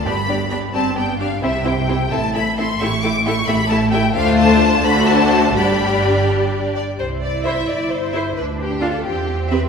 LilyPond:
<<
  \new Staff \with { instrumentName = "Violin section" } { \time 6/8 \key c \major \tempo 4. = 87 b''4 b''8 a''8 g''8 f''8 | e''8 g''4 a''8 b''8 c'''8 | des'''8 d'''8 des'''8 b''8 a''8 g''8 | f''8 a''4 b''8 a''4 |
b''4. r4. | r4 e''16 r4 r16 e''16 r16 | r4 f''16 r4 r16 e''16 r16 | }
  \new Staff \with { instrumentName = "Violin section" } { \time 6/8 \key c \major <g' d''>8 <g' d''>8 <g' d''>8 <g' d''>8 <g' d''>8 <g' d''>8 | <g' c''>8 <g' c''>8 <g' c''>8 <a' e''>8 <a' e''>8 <a' e''>8 | <g' e''>8 <g' e''>8 <g' e''>8 <g' e''>8 <g' e''>8 <g' e''>8 | <f' c''>4. <fis' c''>4. |
<g' d''>2~ <g' d''>8 d''8 | c''8 d''8 e''8 d''8 c''4 | b'8 g'8 a'8 g'4 b'8 | }
  \new Staff \with { instrumentName = "Viola section" } { \time 6/8 \key c \major <b d'>8 <b d'>8 <b d'>8 c'8 b8 d'8 | <c' e'>8 <c' e'>8 <c' e'>8 <c' e'>8 <c' e'>8 <c' e'>8 | <a e'>8 <a e'>8 <a e'>8 <a e'>8 <a e'>8 <a e'>8 | <a d'>4. <a d'>4. |
<g d'>2~ <g d'>8 r8 | r4 <e' c''>16 r4 r16 <e' c''>16 r16 | r4 <d' f'>16 r4 r16 <c' g'>16 r16 | }
  \new Staff \with { instrumentName = "Cello section" } { \clef bass \time 6/8 \key c \major g,4. g,4. | c4. a,4. | a,4. a,4. | d,4. d,4. |
g,2~ g,8 r8 | e'2. | d'4. c'4. | }
  \new Staff \with { instrumentName = "Double bass section" } { \clef bass \time 6/8 \key c \major g,,4. g,,4. | c,4. a,,4. | a,,4. a,,4. | d,4. d,4. |
g,,2~ g,,8 r8 | c,4. g,,4. | d,4. e,4. | }
>>